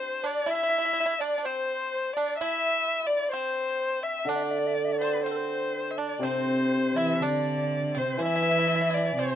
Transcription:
Already playing: C4 C5
0.23 D4 D5
0.46 E4 E5
0.50 E5
0.55 E4
0.63 E4
0.69 E4
0.78 E4
0.85 E4
0.93 E4
1.00 E4
1.06 E4
1.19 D4 D5
1.38 D4
1.44 C4 C5
2.13 D4 D5
2.37 E4 E5
3.07 D5
3.29 C5
3.33 C4
4.03 E5
4.25 D3 D4 D5
4.36 E5
4.43 D5
4.51 E5
4.59 D5
4.67 E5
4.75 D5
4.85 E5
4.92 D5
5.01 C4 C5
5.24 C4 C5
5.31 A4
5.37 C5
5.91 E5
5.98 D4 D5
6.19 C3 C4 C5
6.95 E3 E4 E5
7.21 D3 D4 D5
7.95 C3 C4 C5
8.18 E3 E4
8.22 E4 E5
8.36 E4
8.42 E4
8.51 E4
8.58 E4
8.67 E4
8.75 E4
8.81 E4
8.90 E4 D5
8.97 E4
9.05 E4
9.16 C3 C4 C5

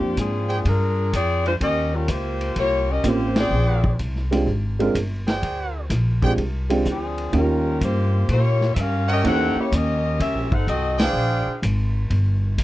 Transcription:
Already playing: F3 A#3 C4 D4 F4 G4 G5
0.00 F2
0.17 G#2 F3 C4 D4 G#4, kick, hi-hat pedal, ride
0.49 G#4 C5 D5 G5, ride
0.65 G2 D4 F4 G#4 A#4, kick, ride
1.13 F2 C4 F4 G#4 D5, kick, hi-hat pedal, ride
1.46 G#3 D4 F4 C5, ride
1.61 D#2 C#4 G4 A#4 D#5, kick, ride
1.94 G3 C#4 F4 A#4
2.08 C#2 A#3 F4 G4 C5, kick, hi-hat pedal, ride
2.41 ride
2.56 C2 A#3 F4 G4 C#5, kick, ride
2.90 C#4 G4 A#4 D#5
3.03 A1 A#3 C4 C#4 F4 G4 C5, kick, hi-hat pedal, ride
3.36 C4 F4 G#4 C5 D5 G5, snare, ride
3.50 A#1
3.84 kick
3.99 C2, kick, hi-hat pedal, ride
4.16 snare
4.31 G#3 C4 D4 F4 G4, snare, ride
4.46 G#1, kick
4.79 G#3 C4 D4 F4 A#4, ride
4.95 G1, kick, hi-hat pedal, ride
5.27 G#4 C5 D5 G5, snare, ride
5.42 D2, kick, ride
5.90 A#1, kick, snare, hi-hat pedal, ride
6.22 G#3 C4 D4 F4 G4 G#4 C5 D5 G5, kick, ride
6.38 C2, kick, ride
6.70 G#3 C4 D4 F4 G4, ride
6.85 D2 C4 D4 G#4, kick, hi-hat pedal
6.89 F3
7.18 ride
7.32 D#2 A#3 C#4 D#4 F4 G4, kick, ride
7.37 G3 C#4 F4 A#4
7.80 G2 A#3 F4 G4 C5, kick, hi-hat pedal, ride
8.28 A#2 A#3 F4 G4 C#5, kick, ride
8.61 snare
8.75 G2 E5, kick, hi-hat pedal, ride
8.79 C#4 G4 A#4 F5
9.09 C#4 G4 A#4 C#5 D#5 E5 G5, ride
9.23 E2 A#3 C#4 D#4 E4 G4 A4 C5 F#5, kick, ride
9.55 A#3 E4 G4 C#5, muted upright bass stroke
9.72 D#2 C#4 G4 A#4 D#5, kick, hi-hat pedal, ride
10.19 C#2 C#4 G4 A#4 E5, kick, ride
10.34 A#1
10.50 G1 D#4 A4 C5 F#5, kick
10.67 C2 C4 F#4 A4 D#5, kick, hi-hat pedal, ride
10.98 D4 G#4 C5 D5 F5 G5, snare, ride
11.13 A#1
11.46 muted upright bass stroke
11.62 G#1, kick, hi-hat pedal, ride
12.10 G1, kick, ride
12.58 A#1, kick, hi-hat pedal, ride

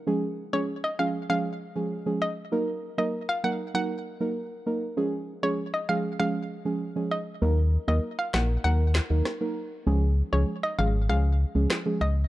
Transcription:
0.07 F3 G#3 C#4 G#4
0.53 F3 G#3 C#4 G#4 C#5
0.84 D#5
0.99 F3 G#3 C#4 G#4 F5
1.29 F3 G#3 C#4 G#4 F5
1.76 F3 G#3 C#4 G#4
2.06 F3 G#3 C#4 G#4
2.22 D#5
2.52 F#3 A#3 D#4 A#4
2.98 F#3 A#3 D#4 A#4 D#5
3.29 F5
3.44 F#3 A#3 D#4 A#4 F#5
3.74 F#3 A#3 D#4 A#4 F#5
4.20 F#3 A#3 D#4 A#4
4.66 F#3 A#3 D#4 A#4
4.97 F3 G#3 C#4 G#4
5.43 F3 G#3 C#4 G#4 C#5
5.74 D#5
5.89 F3 G#3 C#4 G#4 F5
6.19 F3 G#3 C#4 G#4 F5
6.65 F3 G#3 C#4 G#4
6.96 F3 G#3 C#4 G#4
7.11 D#5
7.41 D#2 F#3 A#3 D#4 A#4
7.87 D#2 F#3 A#3 D#4 A#4 D#5
8.19 F5
8.33 A#1 F#3 A#3 D#4 A#4 F#5, snare, clap
8.64 D#2 F#3 A#3 D#4 A#4 F#5
8.95 snare, clap
9.10 D#2 F#3 A#3 D#4 A#4
9.25 cross-stick, snare
9.40 F#3 A#3 D#4 A#4
9.86 C#2 F3 G#3 C#4 G#4
10.32 C#2 F3 G#3 C#4 G#4 C#5
10.63 D#5
10.78 G#1 F3 G#3 C#4 G#4 F5
11.09 C#2 F3 G#3 C#4 G#4 F5
11.55 C#2 F3 G#3 C#4 G#4
11.70 cross-stick, snare, clap
11.86 F3 G#3 C#4 G#4
12.01 C#2 D#5

